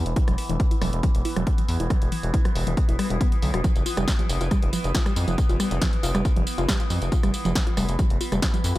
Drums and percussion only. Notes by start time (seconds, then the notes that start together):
0.06 closed hi-hat
0.16 kick, closed hi-hat
0.28 cross-stick, closed hi-hat
0.38 open hi-hat
0.49 closed hi-hat
0.60 kick, closed hi-hat
0.71 closed hi-hat
0.82 cross-stick, open hi-hat
0.93 closed hi-hat
1.03 kick, closed hi-hat
1.15 closed hi-hat
1.25 open hi-hat
1.36 cross-stick, closed hi-hat
1.47 kick, closed hi-hat
1.58 closed hi-hat
1.69 open hi-hat
1.80 closed hi-hat
1.90 kick, cross-stick, closed hi-hat
2.02 closed hi-hat
2.12 open hi-hat
2.23 closed hi-hat
2.34 kick, closed hi-hat
2.45 cross-stick, closed hi-hat
2.56 open hi-hat
2.67 closed hi-hat
2.77 kick, closed hi-hat
2.89 closed hi-hat
2.99 cross-stick, open hi-hat
3.10 closed hi-hat
3.21 kick, closed hi-hat
3.32 closed hi-hat
3.42 open hi-hat
3.54 cross-stick, closed hi-hat
3.64 kick, closed hi-hat, tambourine
3.76 closed hi-hat, tambourine
3.86 open hi-hat, tambourine
3.97 cross-stick, closed hi-hat, tambourine
4.08 kick, snare, closed hi-hat, tambourine
4.19 closed hi-hat
4.29 open hi-hat, tambourine
4.41 closed hi-hat, tambourine
4.51 kick, cross-stick, closed hi-hat, tambourine
4.62 closed hi-hat
4.73 open hi-hat, tambourine
4.84 closed hi-hat, tambourine
4.95 kick, snare, closed hi-hat, tambourine
5.06 cross-stick, closed hi-hat, tambourine
5.16 open hi-hat, tambourine
5.28 closed hi-hat, tambourine
5.38 kick, closed hi-hat, tambourine
5.49 closed hi-hat, tambourine
5.60 cross-stick, open hi-hat, tambourine
5.71 closed hi-hat, tambourine
5.82 kick, snare, closed hi-hat, tambourine
5.93 closed hi-hat
6.03 open hi-hat, tambourine
6.15 cross-stick, closed hi-hat, tambourine
6.25 kick, closed hi-hat, tambourine
6.36 closed hi-hat
6.47 open hi-hat, tambourine
6.58 closed hi-hat, tambourine
6.68 kick, cross-stick, snare, closed hi-hat, tambourine
6.80 closed hi-hat, tambourine
6.90 open hi-hat, tambourine
7.02 closed hi-hat, tambourine
7.12 kick, closed hi-hat, tambourine
7.23 cross-stick, closed hi-hat, tambourine
7.34 open hi-hat, tambourine
7.45 closed hi-hat, tambourine
7.55 kick, snare, closed hi-hat, tambourine
7.67 closed hi-hat
7.77 cross-stick, open hi-hat, tambourine
7.89 closed hi-hat, tambourine
7.99 kick, closed hi-hat, tambourine
8.10 closed hi-hat
8.21 open hi-hat, tambourine
8.32 cross-stick, closed hi-hat, tambourine
8.42 kick, snare, closed hi-hat, tambourine
8.54 closed hi-hat, tambourine
8.64 open hi-hat, tambourine